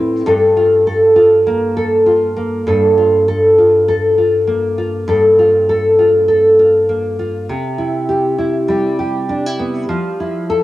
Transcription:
0.00 0.26 A2 medium
0.00 0.33 C4 medium
0.00 0.33 E4 medium
0.00 0.26 B4 medium
0.26 2.66 G2 medium
0.26 0.87 A4 medium
0.57 1.16 F4 medium
0.87 1.76 A4 medium
1.16 2.06 F4 medium
1.47 2.36 A#3 medium
1.77 2.67 A4 medium
2.06 2.97 F4 medium
2.37 3.31 A#3 medium
2.67 5.06 G2 medium
2.67 3.27 A4 medium
2.98 3.57 F4 medium
3.28 3.87 A4 medium
3.58 4.17 F4 medium
3.88 5.08 A4 medium
4.18 4.77 F4 medium
4.47 6.87 A#3 medium
4.78 5.37 F4 medium
5.08 7.48 G2 medium
5.08 5.68 A4 medium
5.39 5.98 F4 medium
5.69 6.27 A4 medium
5.99 6.58 F4 medium
6.28 7.54 A4 medium
6.59 7.18 F4 medium
6.89 7.55 A#3 medium
7.19 7.55 F4 medium
7.49 9.88 C3 medium
7.78 8.38 E4 soft
8.09 8.99 G4 medium
8.38 9.29 E4 soft
8.68 10.53 G3 medium
8.99 10.49 G4 medium
9.29 9.46 D4 medium
9.46 9.96 E4 soft
9.59 9.95 B3 soft
9.89 10.63 F3 medium
10.20 10.63 E4 medium
10.50 10.63 A4 medium

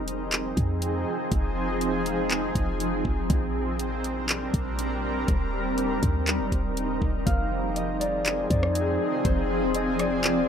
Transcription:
0.00 0.53 F1 loud
0.00 3.26 F3 medium
0.00 7.23 C4 medium
0.00 3.26 D#4 medium
0.00 3.26 G#4 medium
0.08 closed hi-hat medium
0.32 clap loud
0.32 closed hi-hat medium
0.57 1.05 F2 loud
0.57 kick medium
0.57 closed hi-hat medium
0.82 closed hi-hat medium
1.32 2.52 F1 loud
1.32 kick loud
1.32 closed hi-hat medium
1.81 closed hi-hat medium
2.06 closed hi-hat medium
2.30 clap loud
2.30 closed hi-hat medium
2.55 3.03 F1 loud
2.55 kick medium
2.55 closed hi-hat medium
2.80 closed hi-hat medium
3.05 3.29 F1 loud
3.05 kick medium
3.30 4.50 A#1 loud
3.30 7.23 G3 medium
3.30 5.26 D4 medium
3.30 7.23 A#4 medium
3.30 kick loud
3.30 closed hi-hat medium
3.79 closed hi-hat medium
4.04 closed hi-hat medium
4.29 clap loud
4.29 closed hi-hat medium
4.54 5.25 A#1 loud
4.54 kick medium
4.54 closed hi-hat medium
4.79 closed hi-hat medium
5.28 6.00 D#1 loud
5.28 7.25 D#4 medium
5.28 kick loud
5.28 closed hi-hat medium
5.78 closed hi-hat medium
6.03 6.41 D#2 loud
6.03 kick loud
6.03 closed hi-hat medium
6.27 clap loud
6.27 closed hi-hat medium
6.40 6.52 F1 loud
6.52 7.00 D#1 loud
6.52 kick medium
6.52 closed hi-hat medium
6.77 closed hi-hat medium
7.02 7.26 D#1 loud
7.02 kick medium
7.26 8.47 F1 loud
7.26 10.48 F3 medium
7.26 7.50 F3 loud
7.26 10.48 C4 medium
7.26 9.23 D#4 medium
7.26 10.48 G#4 medium
7.26 8.93 F5 medium
7.26 kick loud
7.26 closed hi-hat medium
7.51 7.75 F3 medium
7.76 8.24 F3 medium
7.76 8.06 D#5 medium
7.76 closed hi-hat medium
8.00 9.99 D#4 medium
8.00 8.50 D5 medium
8.00 closed hi-hat medium
8.25 8.49 F3 loud
8.25 9.25 C5 medium
8.25 clap loud
8.25 closed hi-hat medium
8.50 8.98 F2 loud
8.50 9.23 F3 medium
8.50 9.81 D5 medium
8.50 kick medium
8.50 closed hi-hat medium
8.63 cross-stick loud
8.75 closed hi-hat medium
9.25 10.45 F1 loud
9.25 9.48 F3 loud
9.25 10.48 C5 loud
9.25 10.48 D5 medium
9.25 kick loud
9.25 closed hi-hat medium
9.50 9.73 F3 medium
9.74 10.23 F3 medium
9.74 10.06 D#5 medium
9.74 closed hi-hat medium
9.99 10.48 D#4 medium
9.99 10.48 D5 medium
9.99 cross-stick medium
9.99 closed hi-hat medium
10.24 10.48 F3 medium
10.24 clap loud
10.24 closed hi-hat medium

